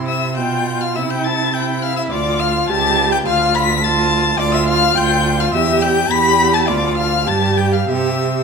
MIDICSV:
0, 0, Header, 1, 5, 480
1, 0, Start_track
1, 0, Tempo, 580833
1, 796, Time_signature, 2, 2, 24, 8
1, 2229, Tempo, 570885
1, 5589, Tempo, 607287
1, 6966, End_track
2, 0, Start_track
2, 0, Title_t, "Violin"
2, 0, Program_c, 0, 40
2, 63, Note_on_c, 0, 88, 75
2, 303, Note_off_c, 0, 88, 0
2, 308, Note_on_c, 0, 91, 75
2, 667, Note_on_c, 0, 89, 74
2, 679, Note_off_c, 0, 91, 0
2, 789, Note_on_c, 0, 88, 81
2, 801, Note_off_c, 0, 89, 0
2, 912, Note_on_c, 0, 91, 84
2, 924, Note_off_c, 0, 88, 0
2, 1027, Note_on_c, 0, 93, 96
2, 1039, Note_off_c, 0, 91, 0
2, 1265, Note_on_c, 0, 91, 79
2, 1277, Note_off_c, 0, 93, 0
2, 1504, Note_on_c, 0, 89, 86
2, 1517, Note_off_c, 0, 91, 0
2, 1621, Note_off_c, 0, 89, 0
2, 1626, Note_on_c, 0, 88, 75
2, 1675, Note_off_c, 0, 88, 0
2, 1741, Note_on_c, 0, 86, 82
2, 1981, Note_on_c, 0, 89, 92
2, 1994, Note_off_c, 0, 86, 0
2, 2220, Note_off_c, 0, 89, 0
2, 2225, Note_on_c, 0, 93, 93
2, 2579, Note_off_c, 0, 93, 0
2, 2584, Note_on_c, 0, 91, 88
2, 2634, Note_off_c, 0, 91, 0
2, 2705, Note_on_c, 0, 89, 98
2, 2945, Note_on_c, 0, 95, 112
2, 2958, Note_off_c, 0, 89, 0
2, 3190, Note_on_c, 0, 93, 96
2, 3202, Note_off_c, 0, 95, 0
2, 3653, Note_off_c, 0, 93, 0
2, 3658, Note_on_c, 0, 86, 107
2, 3775, Note_off_c, 0, 86, 0
2, 3780, Note_on_c, 0, 88, 92
2, 3892, Note_off_c, 0, 88, 0
2, 3897, Note_on_c, 0, 89, 111
2, 4139, Note_on_c, 0, 91, 103
2, 4152, Note_off_c, 0, 89, 0
2, 4502, Note_on_c, 0, 89, 96
2, 4515, Note_off_c, 0, 91, 0
2, 4612, Note_off_c, 0, 89, 0
2, 4617, Note_on_c, 0, 88, 102
2, 4856, Note_on_c, 0, 91, 107
2, 4868, Note_off_c, 0, 88, 0
2, 5093, Note_on_c, 0, 95, 111
2, 5106, Note_off_c, 0, 91, 0
2, 5459, Note_on_c, 0, 93, 85
2, 5471, Note_off_c, 0, 95, 0
2, 5573, Note_on_c, 0, 86, 84
2, 5586, Note_off_c, 0, 93, 0
2, 5804, Note_off_c, 0, 86, 0
2, 5809, Note_on_c, 0, 89, 93
2, 6047, Note_on_c, 0, 93, 85
2, 6059, Note_off_c, 0, 89, 0
2, 6286, Note_on_c, 0, 91, 74
2, 6297, Note_off_c, 0, 93, 0
2, 6412, Note_on_c, 0, 89, 67
2, 6423, Note_off_c, 0, 91, 0
2, 6527, Note_off_c, 0, 89, 0
2, 6532, Note_on_c, 0, 88, 77
2, 6966, Note_off_c, 0, 88, 0
2, 6966, End_track
3, 0, Start_track
3, 0, Title_t, "Violin"
3, 0, Program_c, 1, 40
3, 68, Note_on_c, 1, 76, 65
3, 301, Note_off_c, 1, 76, 0
3, 306, Note_on_c, 1, 79, 69
3, 665, Note_off_c, 1, 79, 0
3, 678, Note_on_c, 1, 77, 73
3, 726, Note_off_c, 1, 77, 0
3, 792, Note_on_c, 1, 76, 71
3, 841, Note_off_c, 1, 76, 0
3, 915, Note_on_c, 1, 79, 70
3, 1044, Note_on_c, 1, 81, 75
3, 1056, Note_off_c, 1, 79, 0
3, 1280, Note_on_c, 1, 79, 69
3, 1292, Note_off_c, 1, 81, 0
3, 1517, Note_on_c, 1, 77, 77
3, 1529, Note_off_c, 1, 79, 0
3, 1636, Note_on_c, 1, 76, 80
3, 1648, Note_off_c, 1, 77, 0
3, 1752, Note_off_c, 1, 76, 0
3, 1756, Note_on_c, 1, 74, 81
3, 1992, Note_on_c, 1, 77, 77
3, 2005, Note_off_c, 1, 74, 0
3, 2219, Note_off_c, 1, 77, 0
3, 2224, Note_on_c, 1, 81, 94
3, 2584, Note_on_c, 1, 79, 87
3, 2596, Note_off_c, 1, 81, 0
3, 2705, Note_off_c, 1, 79, 0
3, 2710, Note_on_c, 1, 77, 92
3, 2940, Note_off_c, 1, 77, 0
3, 2945, Note_on_c, 1, 83, 89
3, 3012, Note_off_c, 1, 83, 0
3, 3178, Note_on_c, 1, 81, 89
3, 3654, Note_on_c, 1, 74, 94
3, 3667, Note_off_c, 1, 81, 0
3, 3780, Note_on_c, 1, 76, 81
3, 3792, Note_off_c, 1, 74, 0
3, 3895, Note_off_c, 1, 76, 0
3, 3900, Note_on_c, 1, 77, 91
3, 4128, Note_on_c, 1, 79, 95
3, 4141, Note_off_c, 1, 77, 0
3, 4492, Note_off_c, 1, 79, 0
3, 4497, Note_on_c, 1, 77, 85
3, 4547, Note_off_c, 1, 77, 0
3, 4615, Note_on_c, 1, 76, 88
3, 4857, Note_on_c, 1, 79, 91
3, 4870, Note_off_c, 1, 76, 0
3, 5095, Note_on_c, 1, 83, 106
3, 5108, Note_off_c, 1, 79, 0
3, 5454, Note_on_c, 1, 81, 86
3, 5467, Note_off_c, 1, 83, 0
3, 5576, Note_on_c, 1, 74, 83
3, 5588, Note_off_c, 1, 81, 0
3, 5806, Note_off_c, 1, 74, 0
3, 5810, Note_on_c, 1, 77, 76
3, 6048, Note_on_c, 1, 81, 87
3, 6060, Note_off_c, 1, 77, 0
3, 6284, Note_on_c, 1, 79, 74
3, 6296, Note_off_c, 1, 81, 0
3, 6403, Note_on_c, 1, 77, 72
3, 6415, Note_off_c, 1, 79, 0
3, 6534, Note_on_c, 1, 76, 68
3, 6546, Note_off_c, 1, 77, 0
3, 6966, Note_off_c, 1, 76, 0
3, 6966, End_track
4, 0, Start_track
4, 0, Title_t, "Viola"
4, 0, Program_c, 2, 41
4, 0, Note_on_c, 2, 64, 57
4, 279, Note_off_c, 2, 64, 0
4, 310, Note_on_c, 2, 65, 56
4, 791, Note_on_c, 2, 64, 66
4, 804, Note_off_c, 2, 65, 0
4, 1266, Note_off_c, 2, 64, 0
4, 1271, Note_on_c, 2, 64, 62
4, 1748, Note_on_c, 2, 65, 69
4, 1760, Note_off_c, 2, 64, 0
4, 2228, Note_on_c, 2, 67, 72
4, 2240, Note_off_c, 2, 65, 0
4, 2704, Note_off_c, 2, 67, 0
4, 2709, Note_on_c, 2, 65, 75
4, 3180, Note_off_c, 2, 65, 0
4, 3191, Note_on_c, 2, 65, 75
4, 3656, Note_off_c, 2, 65, 0
4, 3662, Note_on_c, 2, 65, 85
4, 4133, Note_off_c, 2, 65, 0
4, 4142, Note_on_c, 2, 65, 68
4, 4626, Note_on_c, 2, 67, 80
4, 4638, Note_off_c, 2, 65, 0
4, 5097, Note_off_c, 2, 67, 0
4, 5102, Note_on_c, 2, 67, 73
4, 5577, Note_off_c, 2, 67, 0
4, 5584, Note_on_c, 2, 65, 72
4, 6044, Note_off_c, 2, 65, 0
4, 6053, Note_on_c, 2, 67, 65
4, 6528, Note_off_c, 2, 67, 0
4, 6538, Note_on_c, 2, 67, 65
4, 6966, Note_off_c, 2, 67, 0
4, 6966, End_track
5, 0, Start_track
5, 0, Title_t, "Cello"
5, 0, Program_c, 3, 42
5, 0, Note_on_c, 3, 48, 57
5, 309, Note_on_c, 3, 47, 65
5, 321, Note_off_c, 3, 48, 0
5, 798, Note_on_c, 3, 48, 67
5, 810, Note_off_c, 3, 47, 0
5, 1741, Note_off_c, 3, 48, 0
5, 1746, Note_on_c, 3, 38, 72
5, 2218, Note_off_c, 3, 38, 0
5, 2230, Note_on_c, 3, 37, 81
5, 2703, Note_off_c, 3, 37, 0
5, 2713, Note_on_c, 3, 38, 82
5, 3647, Note_off_c, 3, 38, 0
5, 3662, Note_on_c, 3, 38, 78
5, 4133, Note_off_c, 3, 38, 0
5, 4142, Note_on_c, 3, 38, 85
5, 4616, Note_off_c, 3, 38, 0
5, 4623, Note_on_c, 3, 40, 79
5, 5093, Note_off_c, 3, 40, 0
5, 5101, Note_on_c, 3, 40, 83
5, 5586, Note_on_c, 3, 38, 73
5, 5598, Note_off_c, 3, 40, 0
5, 6052, Note_on_c, 3, 43, 77
5, 6064, Note_off_c, 3, 38, 0
5, 6537, Note_off_c, 3, 43, 0
5, 6542, Note_on_c, 3, 48, 65
5, 6966, Note_off_c, 3, 48, 0
5, 6966, End_track
0, 0, End_of_file